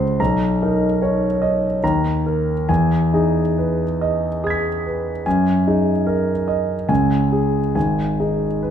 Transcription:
grand piano
Already playing: C#2 C5 C6
0.20 B1 A#5
0.62 D#4 A#4
1.02 C#5
1.42 D#5
1.84 D#2 A#5
2.26 A#4
2.69 E2 G#5
3.13 D#4 G#4
3.58 B4
4.01 D#5
4.44 G#4 D#6 G#6
4.50 B6
4.86 B4
5.26 F#2 G#5
5.67 D#4 G#4
6.07 A#4
6.48 D#5
6.89 C#2 G#5
7.32 G#4
7.75 G#1 G#5
8.20 D#4 G#4
8.62 B4

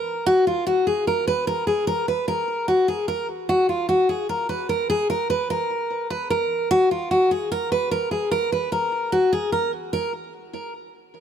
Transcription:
steel-string acoustic guitar
Already playing: A#4
0.26 F#4
0.47 F4
0.67 F#4
0.87 G#4
1.07 A#4
1.27 B4
1.47 A#4
1.67 G#4
1.87 A#4
2.08 B4
2.28 A#4
2.68 F#4
2.88 G#4
3.08 A#4
3.49 F#4
3.69 F4
3.89 F#4
4.09 G#4
4.29 A#4
4.49 B4
4.69 A#4
4.90 G#4
5.10 A#4
5.30 B4
5.50 A#4
6.10 B4
6.30 A#4
6.71 F#4
6.91 F4
7.11 F#4
7.31 G#4
7.52 A#4
7.72 B4
7.91 A#4
8.11 G#4
8.31 A#4
8.52 B4
8.72 A#4
9.12 F#4
9.33 G#4
9.52 A#4
9.93 A#4

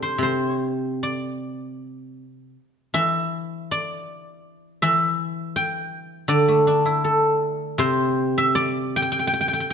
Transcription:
guzheng
Already playing: C3 A3 C4 D4 E4 G4 A4 D5 E5
0.03 C5
0.18 C3
0.23 C5
1.03 D5
2.94 E3 E5
3.71 D5
4.82 E3 E5
5.56 G5
6.28 D3 D5
6.48 A3
6.67 D4
6.86 E4
7.04 A4
7.78 C3 C5
8.38 E5
8.55 D5
8.96 G5
9.02 G5
9.12 G5
9.19 G5
9.27 G5
9.34 G5
9.41 G5
9.48 G5
9.53 G5
9.60 G5

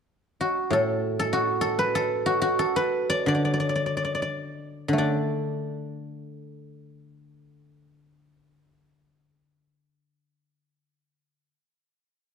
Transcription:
guzheng
0.41 F#4
0.70 A2 A4
1.19 A4
1.33 F#4
1.61 A4
1.79 B4
1.95 A4
2.26 F#4
2.42 F#4
2.59 A4
2.76 B4
3.10 D5
3.26 D3 D5
3.35 D5
3.45 D5
3.53 D5
3.60 D5
3.69 D5
3.75 D5
3.86 D5
3.97 D5
4.04 D5
4.15 D5
4.22 D5
4.88 D3
4.93 A3
4.98 D4 D5

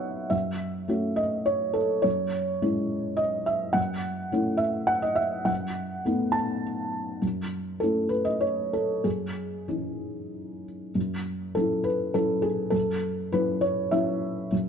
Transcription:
felt piano
Already playing: F#2 B3 D#4 F#4 A4 B4 C#5 D#5 E5 F#5
0.30 F#2 E5
0.88 A3 C#4 F#4
1.16 D#5
1.46 C#5
1.74 A4
2.02 F#2 C#5
2.62 G#3 C#4 E4
3.17 D#5
3.46 E5
3.73 F#2 F#5
4.32 A3 C#4 E4
4.57 E5
4.87 F#5
5.02 D#5
5.16 E5
5.45 F#2 F#5
6.05 A3 B3 D#4
6.32 A5
7.22 F#2
7.80 A3 C#4 E4 A4
8.09 B4
8.25 D#5
8.41 C#5
8.73 A4
9.04 F#2 G#4
9.68 E3 C#4 D#4
10.95 F#2
11.55 F#3 C#4 E4 A4
11.84 B4
12.14 F#3 C#4 E4 A4
12.42 G#4
12.70 F#2 A4
13.32 F#3 C#4 E4 B4
13.61 C#5
13.91 F#3 C#4 E4 E5
14.52 F#2

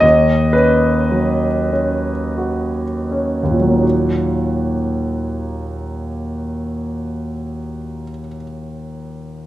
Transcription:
grand piano
0.00 D#2 D#5
0.53 C#4 B4
1.11 F#3
1.72 C#4
2.38 F#4
3.11 C#4
3.43 D#2
3.51 A#2
3.60 F#3
3.68 A#3
3.76 D#4
3.83 F#4

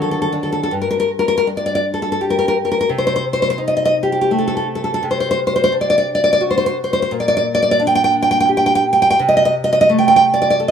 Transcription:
nylon-string guitar
Already playing: D3 D#3 F#3
0.02 A4
0.11 A4
0.22 A4
0.33 D4
0.43 A4
0.52 A4
0.63 A4
0.71 G2
0.82 A#4
0.91 A#4
1.00 A#4
1.19 A#4
1.28 A#4
1.38 A#4
1.47 D4
1.57 D5
1.66 D5
1.75 D5
1.94 A4
2.02 A4
2.12 A4
2.21 G4
2.30 A#4
2.39 A#4
2.48 A#4
2.65 A#4
2.72 A#4
2.81 A#4
2.89 C3
2.98 C5
3.07 C5
3.16 C5
3.33 C5
3.42 C5
3.50 C5
3.58 D#4
3.68 D#5
3.77 D#5
3.85 D#5
4.03 G4
4.12 G4
4.21 G4
4.31 A3
4.39 A4
4.48 A4
4.57 A4
4.75 A4
4.84 A4
4.94 A4
5.03 C3
5.11 C5
5.20 C5
5.31 C5
5.47 C5
5.56 C5
5.64 C5
5.72 D4
5.81 D5
5.90 D5
5.98 D5
6.15 D5
6.24 D5
6.33 D5
6.41 F#4
6.51 C5
6.58 C5
6.66 C5
6.84 C5
6.93 C5
7.02 C5
7.11 A#2
7.20 D5
7.28 D5
7.37 D5
7.55 D5
7.62 D5
7.71 D5
7.79 D4
7.87 G5
7.95 G5
8.04 G5
8.22 G5
8.31 G5
8.40 G5
8.49 G4
8.57 G5
8.66 G5
8.75 G5
8.93 G5
9.02 G5
9.10 G5
9.19 C3
9.29 D#5
9.37 D#5
9.45 D#5
9.64 D#5
9.73 D#5
9.81 D#5
9.89 A3
9.99 G5
10.08 G5
10.16 G5
10.34 D5
10.42 D5
10.50 D5
10.60 A4

